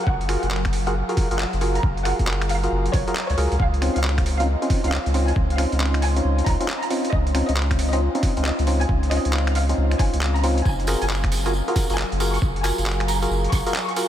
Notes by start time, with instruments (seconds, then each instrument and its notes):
Already playing: ambient pad F#3 A#4 F5 G#5
0.07 sub bass F#1, violin section F#5, kick
0.21 closed hi-hat
0.29 synth stab F4 F#4 G#4 A#4, finger snap, open hi-hat
0.43 sub bass F#1, violin section F#5, closed hi-hat
0.51 clap
0.65 finger snap, kick, closed hi-hat
0.73 open hi-hat
0.87 synth stab F4 F#4 G#4 A#4, violin section F#5, closed hi-hat
1.04 ambient pad A#5
1.09 synth stab F4 F#4 G#4 A#4, closed hi-hat
1.17 kick, open hi-hat
1.31 sub bass F#1, synth stab F4 F#4 G#4 A#4, closed hi-hat
1.39 violin section F#5, clap
1.53 sub bass F#1, closed hi-hat
1.61 synth stab F4 F#4 G#4 A#4, open hi-hat
1.75 violin section A#5, closed hi-hat
1.83 sub bass F#1, kick
1.97 closed hi-hat
2.05 synth stab F4 F#4 G#4 A#4, violin section F#5, finger snap, open hi-hat
2.19 sub bass F#1, kick, closed hi-hat
2.27 clap
2.42 finger snap, closed hi-hat
2.49 violin section F5, open hi-hat
2.63 synth stab F4 F#4 G#4 A#4, closed hi-hat
2.72 sub bass F#1
2.86 closed hi-hat
2.93 sub bass F#1, violin section C#5, kick, open hi-hat
3.08 synth stab F4 F#4 G#4 A#4, closed hi-hat
3.16 clap
3.29 sub bass C#2, violin section C#5, closed hi-hat
3.38 sub bass C#2, synth stab F4 F#4 G#4 A#4, open hi-hat
3.52 sub bass C#2, closed hi-hat
3.60 sub bass C#2, ambient pad F4, violin section F5, kick
3.74 closed hi-hat
3.82 synth stab C4 C#4 D#4 F4, ambient pad D#5, finger snap, open hi-hat
3.96 sub bass C#2, violin section F5, closed hi-hat
4.02 ambient pad C#4, clap
4.12 ambient pad C6
4.18 finger snap, kick, closed hi-hat
4.26 open hi-hat
4.40 synth stab C4 C#4 D#4 F4, violin section F5, closed hi-hat
4.62 synth stab C4 C#4 D#4 F4, closed hi-hat
4.70 kick, open hi-hat
4.84 sub bass C#2, synth stab C4 C#4 D#4 F4, closed hi-hat
4.92 violin section F5, clap
5.06 sub bass C#2, closed hi-hat
5.14 synth stab C4 C#4 D#4 F4, open hi-hat
5.28 violin section G#5, closed hi-hat
5.36 sub bass C#2, kick
5.50 closed hi-hat
5.58 synth stab C4 C#4 D#4 F4, violin section F5, finger snap, open hi-hat
5.72 sub bass C#2, closed hi-hat
5.80 clap
5.94 finger snap, closed hi-hat
6.02 violin section G#5, open hi-hat
6.16 synth stab C4 C#4 D#4 F4, closed hi-hat
6.24 sub bass C#2
6.38 closed hi-hat
6.46 sub bass C#2, violin section A#5, kick, open hi-hat
6.60 synth stab C4 C#4 D#4 F4, closed hi-hat
6.68 clap
6.82 violin section A#5, closed hi-hat
6.90 synth stab C4 C#4 D#4 F4, open hi-hat
7.05 closed hi-hat
7.12 sub bass C#2, violin section D#5, ambient pad F5, kick
7.27 closed hi-hat
7.34 synth stab C4 C#4 D#4 F4, finger snap, open hi-hat
7.49 sub bass C#2, violin section D#5, closed hi-hat
7.57 clap
7.71 finger snap, kick, closed hi-hat
7.79 open hi-hat
7.93 synth stab C4 C#4 D#4 F4, violin section D#5, closed hi-hat
8.15 synth stab C4 C#4 D#4 F4, closed hi-hat
8.23 kick, open hi-hat
8.37 sub bass C#2, synth stab C4 C#4 D#4 F4, closed hi-hat
8.45 violin section D#5, clap
8.59 sub bass C#2, closed hi-hat
8.67 synth stab C4 C#4 D#4 F4, open hi-hat
8.81 violin section G#5, closed hi-hat
8.89 sub bass C#2, kick
9.03 closed hi-hat
9.11 synth stab C4 C#4 D#4 F4, violin section D#5, finger snap, open hi-hat
9.25 sub bass C#2, closed hi-hat
9.33 clap
9.47 finger snap, closed hi-hat
9.55 violin section F5, open hi-hat
9.69 synth stab C4 C#4 D#4 F4, closed hi-hat
9.77 sub bass C#2
9.91 finger snap, closed hi-hat
9.99 sub bass G#1, synth stab C4 C#4 D#4 F4, violin section G#5, kick, open hi-hat
10.13 sub bass C#2, closed hi-hat
10.21 clap
10.35 violin section A#5, closed hi-hat
10.43 synth stab C4 C#4 D#4 F4, open hi-hat
10.58 closed hi-hat
10.65 sub bass F#1, ambient pad F#3, violin section G#5, kick, tambourine
10.80 closed hi-hat
10.84 synth stab F4 F#4 G#4 A#4, ambient pad A#4, finger snap, open hi-hat, tambourine
10.92 ambient pad G#5
11.01 sub bass F#1, violin section G#5, closed hi-hat, tambourine
11.10 clap, tambourine
11.24 finger snap, kick, closed hi-hat
11.32 open hi-hat, tambourine
11.46 synth stab F4 F#4 G#4 A#4, violin section G#5, closed hi-hat, tambourine
11.53 tambourine
11.68 synth stab F4 F#4 G#4 A#4, closed hi-hat
11.76 kick, open hi-hat, tambourine
11.90 sub bass F#1, synth stab F4 F#4 G#4 A#4, closed hi-hat, tambourine
11.98 violin section G#5, clap, tambourine
12.12 sub bass F#1, closed hi-hat
12.20 synth stab F4 F#4 G#4 A#4, open hi-hat, tambourine
12.34 violin section C#6, closed hi-hat, tambourine
12.42 sub bass F#1, kick, tambourine
12.56 closed hi-hat
12.64 synth stab F4 F#4 G#4 A#4, violin section G#5, finger snap, open hi-hat, tambourine
12.78 sub bass F#1, closed hi-hat, tambourine
12.86 clap
13.00 finger snap, closed hi-hat
13.08 violin section A#5, open hi-hat, tambourine
13.22 synth stab F4 F#4 G#4 A#4, closed hi-hat, tambourine
13.30 sub bass F#1, tambourine
13.44 closed hi-hat
13.52 sub bass F#1, violin section C#6, kick, open hi-hat, tambourine
13.66 synth stab F4 F#4 G#4 A#4, closed hi-hat, tambourine
13.74 clap, tambourine
13.88 violin section C#6, closed hi-hat
13.96 synth stab F4 F#4 G#4 A#4, open hi-hat, tambourine